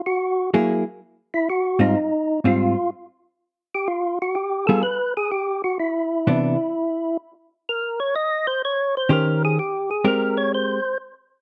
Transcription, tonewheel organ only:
0.06 F#4
1.34 E4
1.50 F#4
1.81 D#4
2.47 F4
3.75 G4
3.88 F4
4.22 F#4
4.35 G4
4.67 A4
4.83 B4
5.17 G#4
5.31 G4
5.64 F#4
5.80 E4
7.69 A#4
8.00 C#5
8.16 D#5
8.47 C5
8.65 C#5
8.97 C5
9.12 A#4
9.45 G#4
9.59 G4
9.91 G#4
10.07 A#4
10.37 C#5
10.54 C5

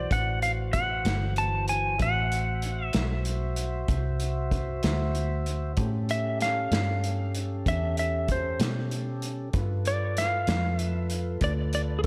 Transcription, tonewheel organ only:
Already playing: E3 F#4 C5
1.98 F#4 C5 E5
5.77 C#4 G4 A4
9.55 F4 A4 B4

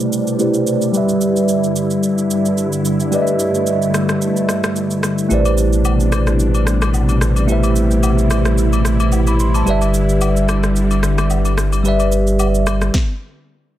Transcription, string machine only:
Already playing: B2 C3 G3 D4
0.94 G2 D3 E4
3.12 A3
5.31 B2 C3 G3 D4
7.49 E4
9.67 D3 G3

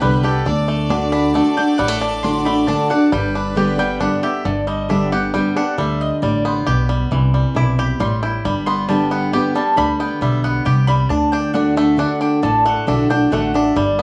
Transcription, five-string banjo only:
Already playing: D4 G4
0.02 G3
0.24 G4
0.46 D4
0.68 A3
0.90 D4
1.12 D4
1.35 A3
1.58 D4
1.79 G3
1.88 A3
2.02 D4
2.24 D4
2.46 A3
2.68 D4
2.91 D4
3.12 G3
3.35 D4
3.57 G4
3.79 G3
4.01 D4
4.23 G4
4.45 D3
4.67 G3
4.90 D4
5.12 G4
5.34 G3
5.57 D4
5.78 G3
6.23 G3
6.45 B3
6.67 G4
6.89 G3
7.12 E3
7.34 G3
7.56 E4
7.79 G4
8.00 G3
8.23 E4
8.45 G3
8.67 B3
8.89 G3
9.11 B3
9.33 G4
9.56 G3
9.78 G3
10.00 B3
10.22 G3
10.44 B3
10.66 G4
10.88 G3
11.10 D4
11.33 D4
11.55 D4
11.77 A3
11.99 D4
12.21 D4
12.43 D3
12.66 A3
12.88 D4
13.11 D4
13.33 A3
13.55 D4
13.76 G3
13.99 B3

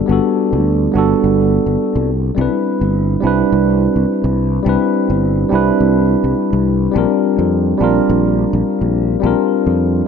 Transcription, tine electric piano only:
Already playing: G3 B3 D4 F#4 A4
0.06 G3 B3 D4
0.11 F#4 A4
0.92 G3 B3 D4
0.97 F#4 A4
2.35 G3 C4 D4
2.40 E4 B4
3.20 G3 C4 D4
3.25 E4 B4
4.63 G3 C4 D4
4.68 E4 B4
5.49 G3 C4 D4
5.54 E4 B4
6.92 G3 C4 D4
6.96 F4 A#4
7.77 G3 C4 D4
7.82 F4 A#4
9.20 G3 C4 D4
9.25 F4 A#4

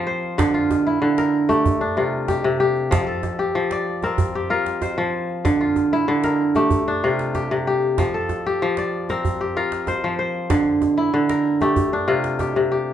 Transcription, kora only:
Already playing: F3 C4 F4 G4 A#4
0.07 C5
0.38 D3
0.54 F4
0.87 E4
1.02 D3
1.18 A#4
1.49 A3 G4
1.81 D4
1.97 C3 F4
2.28 G4
2.44 C3
2.60 G4
2.91 F3
3.07 A4
3.39 G4
3.55 F3
3.72 D5
4.04 C4 A#4
4.35 G4
4.50 F4 A#4
4.82 C5
4.98 F3
5.45 D3
5.61 F4
5.93 E4
6.08 D3
6.24 A#4
6.56 A3 G4
6.88 D4
7.04 C3 F4
7.35 G4
7.51 C3
7.67 G4
7.99 F3
8.14 A4
8.46 G4
8.62 F3
8.79 D5
9.10 C4 A#4
9.41 G4
9.57 F4 A#4
9.88 C5
10.04 F3
10.19 C5
10.50 D3
10.98 E4
11.14 D3
11.30 A#4
11.62 A3 G4
11.93 D4
12.08 C3 F4
12.40 G4
12.56 C3
12.72 G4

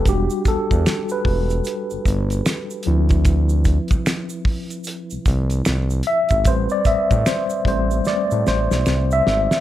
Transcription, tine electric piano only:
0.07 G3 D4 F#4 G4
0.48 A4
1.12 B4
2.86 F3 C4 E4
6.07 E5
6.47 G3 C4 B4 C5
6.72 D5
6.86 E5
7.27 C5
7.67 G3 A3 C4 C5
8.07 D5
8.48 C5
9.13 E5

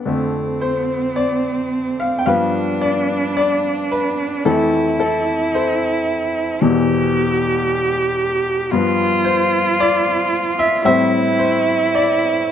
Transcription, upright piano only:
0.05 F2 D3 A3
0.61 C5
1.16 D5
2.00 F5
2.19 G5
2.26 G2 F3 B3 B4 F5
2.81 D5
3.37 D5
3.92 B4
4.45 F2 E3 A3 E4 A4
5.00 A4
5.55 A4 C5
6.62 E2 B2 E3
8.72 G2 F3 B3
9.25 C5
9.80 D5
10.59 E5
10.85 A2 G3 C4 C5 E5
11.39 C5
11.95 D5

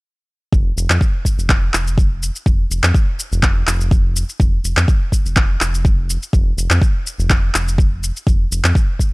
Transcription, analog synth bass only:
0.52 F1
0.77 F1
0.89 F2
1.38 F1
1.73 F1
2.46 F1
2.70 F1
2.83 F2
3.32 F1
3.67 F1
4.40 F1
4.64 F1
4.76 F2
5.25 F1
5.61 F1
6.33 F1
6.57 F1
6.70 F2
7.18 F1
7.54 F1
8.27 F1
8.51 F1
8.64 F2

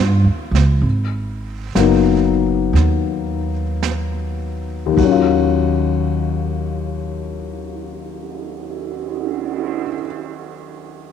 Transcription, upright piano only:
1.75 F#3 A#3 B3
1.80 D#4
4.86 D#2
4.93 D#3
4.98 F#3
5.05 C#4
5.11 F4

